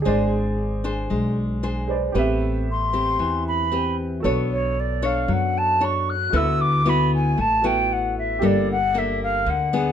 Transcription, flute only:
2.71 C6
3.47 B5
4.52 C#5
4.79 D5
5.05 F5
5.32 F#5
5.57 A5
5.84 C#6
6.09 F#6
6.36 E6
6.61 D6
6.89 B5
7.14 G#5
7.40 A5
7.65 G5
7.92 F#5
8.18 E5
8.46 D5
8.71 F#5
8.98 E5
9.23 F5
9.49 F#5

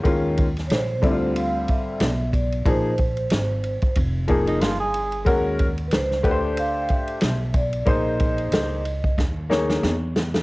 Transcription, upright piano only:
0.03 D#3 G#3 C#4 F4
1.02 D3 G3 C4 E4
1.11 F4
2.65 F3 A#3 D#4 G#4
4.28 F3 A#3 D#4 G#4
5.25 G#3 C#4 F#4 A#4
6.23 A3 D4 G4 B4
6.31 C5
7.85 A#3 D#4 G#4 C5
9.49 A#3 D#4 G#4 C#5

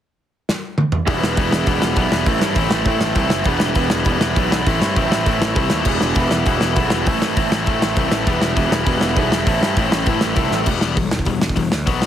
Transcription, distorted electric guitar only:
1.07 E3 G3 B3 E4
1.37 E3 G3 B3 E4
1.67 E3 G3 B3 E4
1.96 E3 G3 B3 E4
2.27 A2 E3 A3 C4 E4
2.55 A2 E3 A3 C4 E4
2.86 A2 E3 A3 C4 E4
3.16 A2 E3 A3 C4 E4
3.45 E3 G3 B3 E4
3.76 E3 G3 B3 E4
4.06 E3 G3 B3 E4
4.36 E3 G3 B3 E4
4.66 A2 E3 A3 C4 E4
4.96 A2 E3 A3 C4 E4
5.26 A2 E3 A3 C4 E4
5.56 A2 E3 A3 C4 E4
5.87 E3 G3 B3 E4
6.17 E3 G3 B3 E4
6.46 E3 G3 B3 E4
6.75 E3 G3 B3 E4
7.05 A2 E3 A3 C4 E4
7.36 A2 E3 A3 C4 E4
7.66 A2 E3 A3 C4 E4
7.97 A2 E3 A3 C4 E4
8.26 E3 G3 B3 E4
8.55 E3 G3 B3 E4
8.85 E3 G3 B3 E4
9.16 E3 G3 B3 E4
9.46 A2 E3 A3 C4 E4
9.77 A2 E3 A3 C4 E4
10.08 A2 E3 A3 C4 E4
10.36 A2 E3 A3 C4 E4
10.67 E3 G3 B3
10.96 E3 G3
11.27 E3 G3
11.56 E3 G3
11.86 B2 F#3 B3

